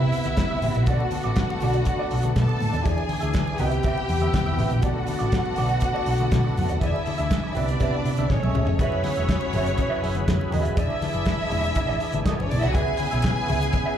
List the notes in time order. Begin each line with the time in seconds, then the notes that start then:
Already playing: C3 B3 E4 E5
0.01 C3, muted clean electric guitar stroke
0.12 muted clean electric guitar stroke, open hi-hat
0.23 C2 E5, closed hi-hat, high conga
0.28 G4 B4
0.37 G1, muted clean electric guitar stroke, kick, snare, closed hi-hat, muted conga, high conga
0.51 G4 B4 E5
0.62 A1 G4 B4 E5, open hi-hat, high conga, low conga
0.75 A#1, muted clean electric guitar stroke, closed hi-hat
0.86 B1 A3 B3 D4 F#4 A4 D5 F#5, kick, closed hi-hat
1.00 muted clean electric guitar stroke, muted conga
1.11 muted clean electric guitar stroke, open hi-hat, high conga
1.23 A1 F#4 A4 D5, closed hi-hat
1.36 kick, snare, closed hi-hat, muted conga, high conga
1.50 muted clean electric guitar stroke, muted conga
1.60 B1 F#4 A4 D5, open hi-hat, high conga, low conga
1.73 muted clean electric guitar stroke, closed hi-hat
1.85 muted clean electric guitar stroke, kick, closed hi-hat, muted conga
1.99 F#4 A4 D5
2.11 B1, muted clean electric guitar stroke, open hi-hat
2.22 muted clean electric guitar stroke, closed hi-hat, high conga
2.36 B2 A4 A5, muted clean electric guitar stroke, kick, snare, closed hi-hat, high conga
2.48 muted clean electric guitar stroke, muted conga
2.61 A2, open hi-hat, high conga, low conga
2.73 D#2, muted clean electric guitar stroke, closed hi-hat
2.84 E2 E3 E4 G#4 D5 G#5, kick, closed hi-hat
2.96 muted clean electric guitar stroke, muted conga
3.09 muted clean electric guitar stroke, open hi-hat, high conga
3.21 D2 E4 G#4 E5, closed hi-hat
3.33 kick, snare, closed hi-hat, high conga
3.47 muted clean electric guitar stroke, muted conga
3.58 C2 C3 B3 E4 G4 B4 E5 G5, open hi-hat, high conga, low conga
3.72 muted clean electric guitar stroke, closed hi-hat
3.83 G4 B4 E5, kick, closed hi-hat, muted conga
3.97 muted clean electric guitar stroke, muted conga
4.09 E2, muted clean electric guitar stroke, open hi-hat
4.20 G4 B4 E5, closed hi-hat, high conga
4.34 muted clean electric guitar stroke, kick, snare, closed hi-hat, high conga
4.46 E2 G4 B4 E5, muted conga
4.58 A1 G4 B4 E5, open hi-hat, high conga, low conga
4.71 A#1, muted clean electric guitar stroke, closed hi-hat
4.82 B1 A3 D4 F#4 A4 D5 F#5, kick, closed hi-hat, muted conga
4.95 muted clean electric guitar stroke
5.06 muted clean electric guitar stroke, open hi-hat, high conga
5.19 A1 F#4 A4 D5, closed hi-hat
5.32 kick, snare, closed hi-hat, high conga
5.44 muted clean electric guitar stroke, muted conga
5.56 B1 F#4 A4 D5, open hi-hat, high conga, low conga
5.69 muted clean electric guitar stroke, closed hi-hat
5.80 muted clean electric guitar stroke, kick, closed hi-hat
5.94 F#4 A4 D5, muted conga
6.06 B1, muted clean electric guitar stroke, open hi-hat
6.18 muted clean electric guitar stroke, closed hi-hat, high conga
6.32 B2, muted clean electric guitar stroke, kick, snare, closed hi-hat, high conga
6.44 muted clean electric guitar stroke
6.57 F#2, open hi-hat, high conga, low conga
6.69 D#2, muted clean electric guitar stroke, closed hi-hat
6.81 E2 E3 D4 E4 G#4 D5 E5, kick, closed hi-hat, muted conga
6.95 muted clean electric guitar stroke, muted conga
7.06 muted clean electric guitar stroke, open hi-hat, high conga
7.18 D2 E4 G#4 E5, closed hi-hat
7.31 kick, snare, closed hi-hat, high conga
7.44 muted clean electric guitar stroke
7.55 C2 C3 B3 D4 E4 G4 B4 D5 E5, open hi-hat, high conga, low conga
7.68 muted clean electric guitar stroke, closed hi-hat
7.80 C3 G4 B4 E5, kick, closed hi-hat, muted conga
7.94 muted clean electric guitar stroke
8.05 C3, muted clean electric guitar stroke, open hi-hat
8.17 C2 G4 B4 E5, closed hi-hat, high conga
8.29 A1 G#3 A3 C#4 C#5, muted clean electric guitar stroke, kick, snare, muted conga, high conga
8.43 B1 G#4 C#5 E5, high tom, muted conga
8.55 C#2 G#4 C#5 E5, mid tom, high conga, low conga
8.67 F1, muted clean electric guitar stroke, floor tom
8.79 F#1 F#3 C#4 E4 G#4 B4 C#5 E5, kick, closed hi-hat, muted conga
8.92 muted conga
9.04 muted clean electric guitar stroke, snare, open hi-hat, high conga
9.16 E1 G#4 B4 E5, closed hi-hat
9.29 kick, snare, closed hi-hat
9.41 muted clean electric guitar stroke, muted conga
9.53 F#1 G#4 B4 E5, open hi-hat, high conga, low conga
9.66 muted clean electric guitar stroke, closed hi-hat
9.78 muted clean electric guitar stroke, kick, closed hi-hat, muted conga, low conga
9.90 G#4 B4 E5
10.01 F#1 G#4 B4 E5, open hi-hat
10.14 muted clean electric guitar stroke, closed hi-hat, high conga
10.26 F#2, muted clean electric guitar stroke, kick, snare, closed hi-hat, muted conga, high conga
10.39 muted clean electric guitar stroke, muted conga
10.51 E2 G#4 B4 E5, open hi-hat, high conga, low conga
10.64 D#1 G#4 B4 E5, closed hi-hat
10.76 E1 E3 D4 E4 G#4 D5 E5, kick, closed hi-hat
10.90 muted conga
11.01 snare, open hi-hat, high conga
11.13 F#1 G#4 D5 E5, closed hi-hat
11.26 kick, snare, closed hi-hat
11.38 muted clean electric guitar stroke
11.50 E1 G#4 D5 E5, open hi-hat, high conga, low conga
11.63 muted clean electric guitar stroke, closed hi-hat
11.74 muted clean electric guitar stroke, kick, closed hi-hat, muted conga, low conga
11.87 G#1 G#4 D5 E5
12.00 G#4 D5 E5, open hi-hat
12.12 G#1, muted clean electric guitar stroke, closed hi-hat, high conga
12.24 A3 G#4 A4 D5 E5, kick, snare, closed hi-hat, high conga
12.34 B3 B4, muted clean electric guitar stroke
12.39 F#1 C#4 C#5, muted conga
12.49 B1 D4 D5, muted clean electric guitar stroke, open hi-hat, high conga, low conga
12.58 E4 D5 E5
12.63 C2 F#4 G#4 F#5, closed hi-hat
12.74 C#2 C#3 B3 E4 G#4 B4 E5 G#5, kick, closed hi-hat
12.88 muted conga
12.98 muted clean electric guitar stroke, clap, open hi-hat, high conga
13.11 B1 G#4 B4 E5, closed hi-hat
13.23 kick, snare, clap, closed hi-hat
13.36 muted clean electric guitar stroke
13.47 C#2 G#4 B4 E5, open hi-hat, high conga, low conga
13.60 muted clean electric guitar stroke, closed hi-hat
13.73 muted clean electric guitar stroke, kick, closed hi-hat, low conga
13.86 G#4 B4 E5